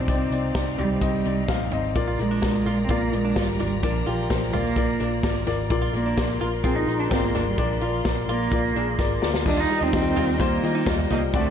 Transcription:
Already playing: C3 C4 D#4 F4 C5 D5 F5
0.08 C2 C4 D#4 D5, kick, closed hi-hat
0.30 C2 C4 D#4 D5, closed hi-hat
0.55 C2 C4 D#4 D5, kick, snare, closed hi-hat
0.78 C2 G3 C4 D#4 D5, closed hi-hat, floor tom
1.01 C2 C4 D#4 D#5, kick, closed hi-hat
1.25 C2 C4 D#4 D5, closed hi-hat
1.48 A#1 C4 D#4 F5, kick, snare, closed hi-hat
1.71 G#1 C4 D#4 D#5, closed hi-hat, floor tom
1.94 A#1 A#2 A#3 F4 A#4 D5 A#5, kick, closed hi-hat
2.08 F4
2.19 A#1 G#3 A#3 F4 D5, closed hi-hat
2.31 D4
2.42 A#3 F4 D5, kick, snare, closed hi-hat
2.65 A#1 A#3 F4 D5, closed hi-hat
2.84 C4
2.89 A#1 A#3 F4 D5, kick, closed hi-hat
3.12 A#1 G#3 A#3 F4 D5, closed hi-hat
3.25 D4
3.35 G#1 A#3 F4 D5, kick, snare, closed hi-hat
3.40 G3
3.59 G#1 A#3 D4 F4 D5, closed hi-hat, floor tom
3.83 A#1 A#2 F3 A#3 D4 F4 D5, kick, closed hi-hat
4.06 A#1 F3 A#3 F4 G4, closed hi-hat
4.29 A#1 A#3 F4 C5, kick, snare, closed hi-hat
4.53 A#1 A#3 F4 D5, closed hi-hat, floor tom
4.76 A#1 A#3 F4 D5, kick, closed hi-hat
5.00 A#1 A#3 D4 F4 D5, closed hi-hat
5.23 G#1 A#3 F4 D5, kick, snare, closed hi-hat
5.46 G#1 A#3 F4 D5, snare, closed hi-hat, floor tom
5.70 A#1 A#2 A#3 F4 D5 C6, kick, closed hi-hat
5.82 F4
5.93 A#1 A#3 F4 D5, closed hi-hat
6.06 D4
6.17 A#3 F4 D5, kick, snare, closed hi-hat
6.40 A#1 A#3 F4 A#4, closed hi-hat
6.64 A#1 A#3 C4 F4 G#4, kick, closed hi-hat
6.75 D#4
6.87 A#1 A#3 F4 A#4, closed hi-hat
6.99 D4
7.11 G#1 A#3 C4 F4 D5, kick, snare, closed hi-hat
7.24 A#3
7.34 G#1 A#3 D4 F4 D5, snare, closed hi-hat, floor tom
7.48 G3
7.58 A#1 A#2 F3 A#3 D4 F4 D5, kick, closed hi-hat
7.81 A#1 A#3 F4 D5, closed hi-hat
8.05 A#1 A#3 F4 D5, kick, snare, closed hi-hat
8.28 A#1 A#3 F4 D5, closed hi-hat
8.52 A#1 A#3 F4 D5, kick, closed hi-hat
8.75 A#1 A#3 D4 F4 G#4, closed hi-hat
8.99 G#1 A#3 F4 D5, kick, snare
9.22 D2 A#3 F4 D5, snare
9.34 snare
9.46 D#2 D#3 G3 D4 D#4 F4 A#4 D#5 G5, kick, crash
9.57 D#4 F4
9.69 G3 F4 D#5, closed hi-hat
9.81 D#2 C4 D#4
9.93 D#2 G3 F4 D#5, kick, snare, closed hi-hat
10.16 D#2 G3 F4 D#5, closed hi-hat, floor tom
10.39 D#2 G3 A#3 F4 C5, kick, closed hi-hat
10.63 D#3 G3 F4 D#5, closed hi-hat
10.75 D#4
10.86 D#2 G3 F4 D#5, kick, snare, closed hi-hat
10.99 floor tom
11.10 C2 G3 A#3 D#4 F4 D#5, snare, closed hi-hat, floor tom
11.32 D2 D3 C4 D4 F#4 C5 D5 A5, kick, closed hi-hat
11.37 A3

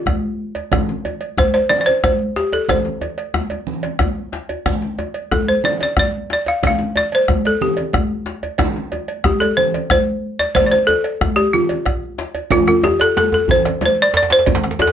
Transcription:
Already playing: F4
0.06 bombo rim, bombo low, cowbell, djembe tone, high conga, djembe bass
0.55 cowbell, djembe slap, djembe tone
0.72 bombo rim, bombo low, cowbell, high conga, low conga, djembe bass
0.89 djembe slap
1.05 cowbell, high conga, djembe tone
1.20 cowbell, high conga
1.38 C5, bombo rim, bombo low, djembe slap, high conga, djembe bass
1.54 C5, bombo rim, cowbell, high conga, djembe tone
1.69 D5, high conga, low conga
1.81 D5
1.86 C5, cowbell, djembe slap
2.04 C5, bombo rim, bombo low, cowbell, high conga, djembe tone, djembe bass
2.36 G4, djembe slap
2.53 A4, cowbell, djembe slap, djembe tone
2.69 C5, bombo rim, bombo low, cowbell, high conga, low conga, djembe bass
2.85 djembe slap
3.01 cowbell, djembe slap, djembe tone, high conga
3.18 bombo rim, cowbell, djembe slap
3.34 bombo rim, djembe slap, high conga, djembe bass
3.50 bombo rim, cowbell, high conga, djembe tone
3.67 djembe slap, low conga
3.83 bombo rim, cowbell, djembe slap, high conga
3.99 bombo rim, bombo low, cowbell, djembe tone, high conga, djembe bass
4.32 bombo rim, djembe slap
4.49 cowbell, djembe tone
4.66 bombo rim, bombo low, cowbell, high conga, djembe bass, low conga
4.82 djembe slap
4.99 cowbell, djembe tone, high conga
5.14 cowbell, high conga
5.32 A4, bombo rim, bombo low, djembe slap, high conga, djembe bass
5.47 C5, bombo rim, djembe tone, high conga
5.64 D5, high conga, low conga
5.81 D5, cowbell, djembe slap
5.97 D5, bombo rim, bombo low, cowbell, djembe tone, high conga, djembe bass
6.30 D5, djembe slap
6.46 F5, cowbell, djembe slap, djembe tone
6.63 bombo rim, bombo low, cowbell, high conga, djembe bass, low conga
6.67 F5
6.79 djembe slap
6.96 D5, cowbell, djembe tone, high conga
7.12 C5, cowbell, high conga
7.28 bombo rim, bombo low, djembe slap, high conga, djembe bass
7.45 A4, cowbell, high conga, djembe tone
7.61 G4, high conga, low conga
7.77 cowbell, djembe slap
7.93 bombo rim, bombo low, cowbell, high conga, djembe tone, djembe bass
8.26 djembe slap
8.43 cowbell, djembe slap, djembe tone
8.58 bombo rim, bombo low, cowbell, high conga, low conga, djembe bass
8.76 djembe slap
8.92 cowbell, high conga, djembe tone
9.08 cowbell, high conga
9.24 G4, bombo rim, bombo low, djembe slap, high conga, djembe bass
9.40 A4, cowbell, high conga, djembe tone
9.57 C5, high conga, low conga
9.74 cowbell, djembe slap
9.90 C5, bombo rim, bombo low, cowbell, high conga, djembe tone, djembe bass
10.39 D5, cowbell, djembe slap, djembe tone
10.55 C5, bombo rim, bombo low, cowbell, djembe slap, high conga, low conga, djembe bass
10.66 D5
10.71 C5, bombo rim, djembe slap, high conga
10.87 A4, bombo rim, cowbell, djembe tone
11.04 bombo rim, cowbell, djembe slap
11.21 bombo rim, bombo low, djembe slap, high conga, djembe bass
11.36 G4, cowbell, djembe slap, djembe tone
11.53 F4, bombo rim, low conga
11.69 cowbell, djembe slap
11.86 bombo rim, bombo low, cowbell, djembe tone
12.02 djembe slap, high conga
12.18 bombo rim, djembe slap
12.35 cowbell, djembe slap, djembe tone
12.51 F4, bombo low, cowbell, djembe slap, high conga, low conga, djembe bass
12.68 F4, bombo rim, djembe tone
12.83 G4, cowbell, djembe slap, djembe tone, high conga
13.00 A4, cowbell, djembe slap
13.17 A4, djembe slap, high conga
13.32 A4, bombo rim, djembe tone, high conga
13.48 C5, bombo low, djembe tone, djembe bass, low conga
13.65 bombo rim, cowbell, djembe slap
13.81 cowbell, djembe slap, djembe tone, high conga
13.86 C5
13.98 high conga
14.02 D5
14.14 D5, djembe slap
14.23 djembe slap
14.30 C5, cowbell, djembe slap, high conga, djembe tone
14.39 djembe slap
14.46 bombo low, cowbell, djembe slap, high conga, low conga, djembe bass
14.55 djembe slap
14.64 bombo rim, djembe slap
14.71 djembe slap
14.79 A4, cowbell, djembe slap, djembe tone, high conga
14.87 djembe slap

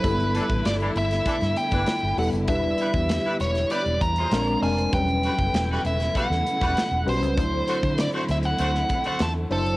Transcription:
Already playing: D3 A3 E4 B4
0.04 G1 G3 A#3 B3 E4 A4, kick, closed hi-hat
0.10 B3
0.20 closed hi-hat
0.35 E3 D4 A4, closed hi-hat
0.49 A1, kick, closed hi-hat
0.65 G1 D5, snare, closed hi-hat
0.80 E3 D4 A4, closed hi-hat
0.96 G1 E5, closed hi-hat
1.11 snare, closed hi-hat
1.25 E3 D4 A4, muted fingered electric bass stroke, kick, closed hi-hat
1.41 G2, snare, closed hi-hat
1.56 G5, closed hi-hat
1.71 G1 E3 D4 B4, kick, closed hi-hat
1.86 snare, closed hi-hat
2.03 G1
2.17 E1 G3 B3 E4 A4 F#5, open hi-hat
2.33 F#1, closed hi-hat
2.48 E1 E3 G3 B3 D4 E4 B4 E5, kick, closed hi-hat
2.78 G3 E4 B4, closed hi-hat
2.93 E2, kick, closed hi-hat
3.09 snare, closed hi-hat
3.24 G3 E4 B4, closed hi-hat
3.40 E1 C#5, snare, closed hi-hat
3.55 snare, closed hi-hat
3.70 G3 E4 B4 D5, closed hi-hat
3.86 E1, closed hi-hat
4.01 E2 A#5, kick, closed hi-hat
4.16 G#3 F4 C5, closed hi-hat
4.31 A#1 G#3 A#3 C4 D4 F4 A#4, snare, closed hi-hat
4.47 closed hi-hat
4.61 F1 G#3 C4 D4 A#4 G#5, open hi-hat
4.78 closed hi-hat
4.92 E1 B2 C#3 E3 F#3 G3 A3 C#4 E4 B4 G5, kick, closed hi-hat
5.08 closed hi-hat
5.23 G3 F#4 B4, closed hi-hat
5.39 F#1, kick, closed hi-hat
5.54 E1, snare, closed hi-hat
5.70 G3 F#4 B4
5.85 E1 E5, closed hi-hat
6.00 snare, closed hi-hat
6.15 G3 F#4 B4 F#5, muted fingered electric bass stroke, kick, closed hi-hat
6.30 E2, snare
6.47 closed hi-hat
6.61 E1 G3 F#4 B4, kick, closed hi-hat
6.77 snare, closed hi-hat
6.91 E1
7.06 B1 G3 C#4 F#4 B4 C5, open hi-hat
7.22 C#2, closed hi-hat
7.36 D2 D3 F#3 A3 C4 D4 E4 C5, kick, closed hi-hat
7.67 A3 F#4 C5, closed hi-hat
7.83 D3, kick, closed hi-hat
7.98 D5, snare, closed hi-hat
8.12 A3 F#4 C5, closed hi-hat
8.28 D2 E5, snare, closed hi-hat
8.43 F#5, closed hi-hat
8.58 D2 A3 F#4 C5, closed hi-hat
8.75 snare
8.89 kick, closed hi-hat
9.04 A3 F#4 C5 F#5, closed hi-hat
9.19 E2 A5, snare, closed hi-hat
9.50 F#1 F#3 D4 E4 A4 C5, open hi-hat
9.66 closed hi-hat

